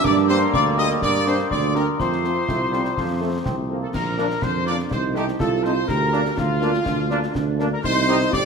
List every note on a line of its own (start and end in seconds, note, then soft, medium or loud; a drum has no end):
0.00 1.95 G3 loud
0.00 1.95 A#3 medium
0.00 0.53 D4 loud
0.04 0.46 G2 loud
0.04 0.16 D5 loud
0.04 0.29 D6 loud
0.04 0.28 D6 loud
0.04 concert bass drum medium
0.04 snare medium
0.04 crash soft
0.17 snare medium
0.28 0.39 A#3 medium
0.28 0.38 D4 medium
0.28 0.39 G4 medium
0.28 0.40 C5 loud
0.28 0.40 C5 medium
0.28 0.52 C6 loud
0.28 0.52 C6 medium
0.28 snare medium
0.53 0.94 D2 loud
0.53 1.47 A#3 loud
0.53 0.76 D5 loud
0.53 0.65 D5 loud
0.53 0.76 D6 loud
0.53 0.60 D6 loud
0.53 concert bass drum medium
0.53 snare medium
0.77 0.86 A#3 medium
0.77 0.86 D4 medium
0.77 0.86 G4 medium
0.77 1.02 D#5 loud
0.77 0.89 D#5 loud
0.77 0.84 D#6 medium
0.77 1.01 D#6 loud
0.77 snare medium
0.90 snare medium
1.02 1.43 G2 medium
1.02 1.25 D5 loud
1.02 1.25 D6 loud
1.02 1.26 D6 loud
1.02 concert bass drum medium
1.02 snare medium
1.26 1.35 A#3 medium
1.26 1.35 D4 medium
1.26 1.35 G4 medium
1.26 1.50 C5 loud
1.26 1.38 C5 loud
1.26 1.49 C6 medium
1.26 1.50 C6 medium
1.26 snare medium
1.39 snare medium
1.51 1.87 D2 medium
1.51 1.96 D4 medium
1.51 1.73 D5 medium
1.51 1.74 D5 loud
1.51 1.57 D6 medium
1.51 1.74 D6 medium
1.51 concert bass drum medium
1.75 1.84 A#3 medium
1.75 1.84 D4 medium
1.75 1.84 G4 medium
1.75 2.00 A#4 medium
1.75 1.87 A#4 loud
1.75 1.82 A#5 medium
1.75 1.98 A#5 medium
1.75 snare medium
1.99 2.40 F2 medium
1.99 2.40 A3 medium
1.99 2.43 C4 medium
1.99 3.66 F4 medium
1.99 3.66 C5 medium
1.99 3.67 C5 medium
1.99 3.66 C6 medium
1.99 3.56 C6 medium
1.99 concert bass drum medium
1.99 snare medium
2.12 snare medium
2.24 2.33 C4 medium
2.24 2.33 F4 medium
2.24 2.33 A4 medium
2.24 snare medium
2.47 2.89 C2 medium
2.47 2.59 A3 medium
2.47 concert bass drum medium
2.47 snare medium
2.71 2.94 G3 medium
2.71 2.81 C4 medium
2.71 2.81 F4 medium
2.71 2.81 A4 medium
2.71 snare medium
2.85 snare medium
2.95 3.38 F2 medium
2.95 3.19 F3 medium
2.95 concert bass drum medium
2.95 snare medium
3.20 3.31 A3 medium
3.20 3.30 C4 medium
3.20 3.30 F4 medium
3.20 3.30 A4 medium
3.44 3.86 C2 medium
3.44 3.56 C4 medium
3.44 concert bass drum medium
3.44 snare medium
3.69 3.92 A#3 medium
3.69 3.79 C4 medium
3.69 3.78 F4 medium
3.69 3.79 A4 soft
3.82 3.93 A4 medium
3.82 3.88 A4 medium
3.82 3.88 A5 medium
3.93 4.34 A#1 medium
3.93 4.92 D4 medium
3.93 4.39 A#4 medium
3.93 4.43 A#4 medium
3.93 4.44 A#5 medium
3.93 concert bass drum medium
3.93 snare medium
3.93 crash medium
4.18 4.27 A#3 medium
4.18 4.27 D4 medium
4.18 4.27 F4 medium
4.18 4.27 A#4 medium
4.18 snare medium
4.30 snare medium
4.42 4.83 F2 medium
4.42 4.67 C5 loud
4.42 4.67 C5 medium
4.42 4.66 C6 medium
4.42 concert bass drum medium
4.42 snare medium
4.66 4.76 A#3 medium
4.66 4.76 D4 medium
4.66 4.75 F4 medium
4.66 4.75 A#4 medium
4.66 4.78 D5 loud
4.66 4.91 D5 medium
4.66 4.73 D6 medium
4.66 snare medium
4.79 snare medium
4.91 5.32 C2 medium
4.91 5.39 D#4 medium
4.91 5.03 C5 loud
4.91 5.15 C5 loud
4.91 4.98 C6 medium
4.91 concert bass drum medium
4.91 snare medium
5.15 5.24 A3 medium
5.15 5.24 C4 medium
5.15 5.24 D#4 medium
5.15 5.25 D#4 medium
5.15 5.27 G4 medium
5.15 5.40 G4 medium
5.15 5.24 A4 medium
5.15 5.22 G5 medium
5.15 snare medium
5.28 snare medium
5.39 5.81 C2 medium
5.39 5.86 F4 loud
5.39 5.64 A4 medium
5.39 5.63 A4 medium
5.39 5.63 A5 medium
5.39 concert bass drum medium
5.39 snare medium
5.63 5.73 A3 medium
5.63 5.73 C4 medium
5.63 5.73 D#4 medium
5.63 5.73 A4 medium
5.63 5.88 C5 medium
5.63 5.89 C5 loud
5.63 5.71 C6 medium
5.63 snare medium
5.88 6.29 D2 loud
5.88 6.39 G4 medium
5.88 6.34 A#4 loud
5.88 6.38 A#4 loud
5.88 6.35 A#5 medium
5.88 concert bass drum medium
5.88 snare medium
5.88 crash soft
6.13 6.22 A#3 medium
6.13 6.22 D4 medium
6.13 6.22 A#4 medium
6.13 snare medium
6.25 snare medium
6.37 6.78 D2 medium
6.37 6.88 F4 loud
6.37 7.47 F4 loud
6.37 7.43 F5 medium
6.37 concert bass drum medium
6.37 snare medium
6.61 6.70 A#3 medium
6.61 6.71 A#3 medium
6.61 6.70 D4 medium
6.61 6.71 D4 medium
6.61 6.70 A#4 medium
6.61 snare medium
6.74 snare medium
6.86 7.27 D2 medium
6.86 7.83 D4 loud
6.86 concert bass drum medium
6.86 snare medium
7.10 7.19 A#3 medium
7.10 7.20 A#3 medium
7.10 7.19 D4 medium
7.10 7.20 A#4 medium
7.10 snare medium
7.23 snare medium
7.35 7.76 D2 medium
7.35 concert bass drum medium
7.35 snare medium
7.59 7.68 A#3 medium
7.59 7.68 D4 medium
7.59 7.68 A#4 medium
7.59 snare medium
7.72 7.83 A#4 medium
7.72 7.78 A#4 loud
7.72 7.83 A#5 medium
7.83 8.24 C2 loud
7.83 8.33 D#4 loud
7.83 8.29 C5 loud
7.83 8.29 C6 loud
7.83 concert bass drum medium
7.83 snare medium
7.83 crash soft
8.08 8.17 G3 loud
8.08 8.17 C4 medium
8.08 8.17 D#4 loud
8.08 8.17 D#4 medium
8.08 8.17 G4 medium
8.08 snare medium
8.21 snare medium
8.32 8.45 G1 medium
8.32 8.45 G4 loud
8.32 8.44 D5 loud
8.32 8.45 D5 loud
8.32 8.45 D6 loud
8.32 concert bass drum medium
8.32 snare medium